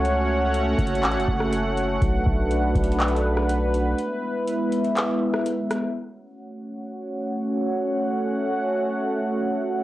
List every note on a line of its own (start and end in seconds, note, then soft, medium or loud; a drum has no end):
0.00 0.75 C#2 loud
0.00 3.94 A3 medium
0.00 1.98 C#4 medium
0.00 3.94 F#4 medium
0.00 1.98 C#5 medium
0.00 3.94 F#5 medium
0.05 closed hi-hat medium
0.54 closed hi-hat medium
0.78 1.05 F#1 loud
0.78 kick loud
0.78 closed hi-hat medium
0.87 closed hi-hat medium
0.95 closed hi-hat medium
1.03 1.17 A1 loud
1.03 clap loud
1.03 closed hi-hat medium
1.11 closed hi-hat medium
1.16 1.27 F#1 loud
1.20 closed hi-hat medium
1.28 1.99 F#1 loud
1.28 kick loud
1.40 cross-stick medium
1.53 closed hi-hat medium
1.77 closed hi-hat medium
2.02 2.25 B1 loud
2.02 3.96 D4 medium
2.02 5.91 B4 medium
2.02 kick loud
2.02 closed hi-hat medium
2.26 2.74 B1 loud
2.26 kick medium
2.51 closed hi-hat medium
2.75 3.94 B1 loud
2.75 kick loud
2.75 closed hi-hat medium
2.84 closed hi-hat medium
2.92 closed hi-hat medium
3.00 clap loud
3.00 closed hi-hat medium
3.08 closed hi-hat medium
3.16 closed hi-hat medium
3.37 cross-stick medium
3.49 closed hi-hat medium
3.74 closed hi-hat medium
3.98 5.93 G#3 medium
3.98 5.93 B3 medium
3.98 5.93 E4 medium
3.98 5.93 E5 medium
3.98 closed hi-hat medium
4.48 closed hi-hat medium
4.72 closed hi-hat medium
4.84 closed hi-hat soft
4.97 clap loud
4.97 closed hi-hat medium
5.34 cross-stick medium
5.46 closed hi-hat medium
5.71 cross-stick loud
5.71 closed hi-hat medium
5.95 9.83 A3 medium
5.95 9.83 C#4 medium
5.95 9.83 F#4 medium
5.95 9.83 C#5 medium
5.95 9.83 F#5 medium